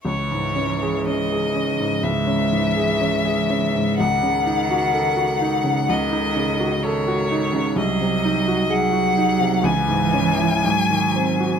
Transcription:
<<
  \new Staff \with { instrumentName = "Violin" } { \time 4/4 \key cis \minor \tempo 4 = 62 cis''4 dis''4 e''2 | fis''2 dis''4 cis''4 | dis''4 fis''4 gis''2 | }
  \new Staff \with { instrumentName = "Grand piano" } { \time 4/4 \key cis \minor cis,16 gis,16 cis'16 gis'16 cis'16 gis'16 cis'16 gis,16 cis,16 cis'16 gis,16 gis'16 cis'16 gis'16 cis'16 gis,16 | cis,16 cis16 dis'16 fis'16 a'16 fis'16 dis'16 cis16 cis,16 dis'16 cis16 fis'16 a'16 fis'16 dis'16 cis16 | bis,,16 bis,16 dis'16 fis'16 gis'16 fis'16 dis'16 bis,16 cis,16 gis,16 cis'16 e'16 gis,16 dis16 bis16 fis'16 | }
  \new Staff \with { instrumentName = "Cello" } { \clef bass \time 4/4 \key cis \minor e2 e2 | dis2 dis4 dis4 | fis4 fis4 e4 fis4 | }
>>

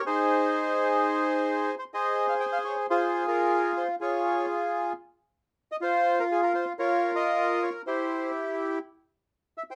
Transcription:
\new Staff \with { instrumentName = "Bandoneon" } { \time 4/4 \key aes \major \tempo 4 = 123 << { c''2.~ c''8 c''16 ees''16~ | \key f \minor ees''8 f''16 g''16 f''16 des''8 c''8. bes'4 c''8 | des''4 r2 r8 ees''16 c''16~ | c''8 bes'16 aes'16 bes'16 c''8 des''8. ees''4 des''8 |
c''4 r2 r8 e''16 g''16 | } \\ { <ees' aes'>2.~ <ees' aes'>8 r16 <aes' c''>16~ | <aes' c''>4.~ <aes' c''>16 <f' aes'>8. f'4. | <f' aes'>2 r4. r16 f'16~ | f'4.~ f'16 <f' bes'>8. bes'4. |
<e' g'>2 r4. r16 c''16 | } >> }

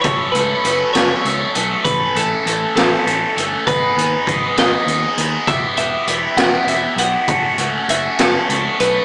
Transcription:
<<
  \new Staff \with { instrumentName = "Clean electric guitar" } { \time 6/8 \key fis \dorian \tempo 4. = 66 cis''8 b'4 cis''4 r8 | b'8 a'4 a'4. | b'4. dis''4 r8 | e''8 e''4 fis''8 e''8 fis''8~ |
fis''4 e''8 a'4 b'8 | }
  \new Staff \with { instrumentName = "Overdriven electric guitar" } { \time 6/8 \key fis \dorian <fis a cis' a'>8 <fis a cis' a'>8 <fis a cis' a'>8 <fis a cis' a'>8 <fis a cis' a'>8 <fis a cis' a'>8 | <e a cis'>8 <e a cis' a'>8 <e a cis' a'>8 <e a cis' a'>8 <e a cis' a'>8 <e a cis' a'>8 | <b dis' gis'>8 <b dis' gis'>8 <b dis' gis'>8 <b dis' gis'>8 <b dis' gis'>8 <b dis' gis'>8 | <b e' g'>8 <b e' g'>8 <b e' g'>8 <b e' g'>8 <b e' g'>8 <b e' g'>8 |
<a cis' fis'>8 <a cis' fis'>8 <a cis' fis'>8 <a cis' fis'>8 <a cis' fis'>8 <a cis' fis'>8 | }
  \new Staff \with { instrumentName = "Fingered electric bass" } { \clef bass \time 6/8 \key fis \dorian fis,,8 cis,8 fis,,8 fis,,8 cis,8 b,,8 | a,,8 a,,8 a,,8 a,,8 a,,8 g,,8 | gis,,8 dis,8 gis,,8 gis,,8 dis,8 dis,8 | e,,8 e,,8 e,,8 e,,8 e,,8 b,,8 |
fis,,8 cis,8 fis,,8 fis,,8 cis,8 b,,8 | }
  \new DrumStaff \with { instrumentName = "Drums" } \drummode { \time 6/8 <hh bd>8 hh8 hh8 <hh sn>8 hh8 hh8 | <hh bd>8 hh8 hh8 <hh sn>8 hh8 hh8 | <hh bd>8 hh8 <hh bd>8 <hh sn>8 hh8 hh8 | <hh bd>8 hh8 hh8 <hh sn>8 hh8 hh8 |
<hh bd>8 hh8 hh8 <hh sn>8 hh8 hh8 | }
>>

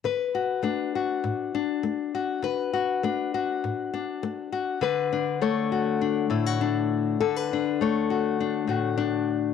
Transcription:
\new Staff \with { instrumentName = "Nylon-string guitar" } { \time 4/4 \key d \major \tempo 4 = 101 << { b'8 fis'8 d'8 fis'4 d'4 fis'8 | b'8 fis'8 d'8 fis'4 d'4 fis'8 | b'8 d'8 cis''8 fis'8 d'8 e'16 fis'16 d'4 | a'16 b'16 d'8 cis''8 fis'8 d'8 fis'8 d'4 | } \\ { d4 a4 a,4 a4 | d4 a4 a,4 a4 | d4 a4. a,4. | d4 a4. a,4. | } >> }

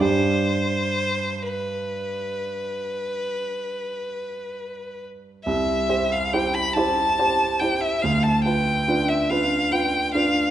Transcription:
<<
  \new Staff \with { instrumentName = "Violin" } { \time 12/8 \key g \mixolydian \tempo 4. = 46 c''4. b'1 r8 | e''8. f''16 g''16 b''16 a''4 g''16 e''16 f''16 a''16 g''8. e''16 f''8 g''8 f''8 | }
  \new Staff \with { instrumentName = "Grand piano" } { \time 12/8 \key g \mixolydian <g, d' g' d''>1. | c,8 <g' c''>8 <e' g' c''>8 <e' g' c''>8 <g' c''>8 <e' g' c''>8 d,8 <f' b'>8 <d' f' b'>8 <d' f' b'>8 <f' b'>8 <d' f' b'>8 | }
>>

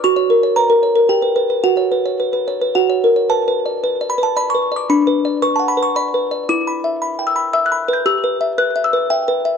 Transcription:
\new Staff \with { instrumentName = "Music box" } { \time 3/4 \key b \minor \tempo 4 = 113 << { cis'''4 ais''4 g''4 | fis''2 fis''4 | a''4. b''16 a''16 b''16 cis'''8 d'''16 | b''4 cis'''16 a''16 b''16 cis'''16 b''4 |
d'''4. e'''8 e'''16 fis'''8 g'''16 | e'''4 fis'''8 e'''8 g''4 | } \\ { fis'16 cis''16 ais'16 cis''16 b'16 ais'16 cis''16 ais'16 g'16 b'16 b'16 b'16 | fis'16 cis''16 b'16 cis''16 b'16 b'16 cis''16 b'16 fis'16 cis''16 ais'16 cis''16 | \tuplet 3/2 { b'8 b'8 d''8 b'8 d''8 b'8 d''8 b'8 d''8 } | \tuplet 3/2 { d'8 b'8 d''8 b'8 fis''8 b'8 d''8 b'8 d''8 } |
\tuplet 3/2 { e'8 b''8 e''8 b''8 g''8 b''8 e''8 b''8 b'8 } | \tuplet 3/2 { g'8 b'8 e''8 b'8 e''8 b'8 e''8 b'8 e''8 } | } >> }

